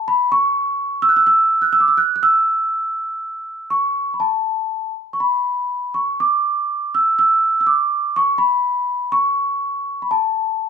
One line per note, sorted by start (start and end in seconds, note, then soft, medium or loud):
0.08 0.30 B5 medium
0.32 1.05 C#6 medium
1.02 1.08 E6 medium
1.09 1.14 F#6 medium
1.17 1.26 E6 medium
1.27 1.64 E6 medium
1.62 1.71 F#6 medium
1.73 1.81 E6 medium
1.80 1.89 D6 medium
1.88 1.97 E6 medium
1.97 2.14 F#6 medium
2.16 2.22 F#6 medium
2.23 3.67 E6 medium
3.70 4.15 C#6 medium
4.14 4.21 B5 soft
4.20 4.92 A5 medium
5.13 5.21 C#6 soft
5.20 5.98 B5 medium
5.94 6.21 C#6 medium
6.20 6.90 D6 medium
6.95 7.18 E6 medium
7.19 7.59 E6 medium
7.61 7.67 E6 medium
7.67 8.17 D6 medium
8.16 8.41 C#6 medium
8.38 9.14 B5 medium
9.12 10.05 C#6 medium
10.02 10.09 B5 soft
10.11 10.69 A5 medium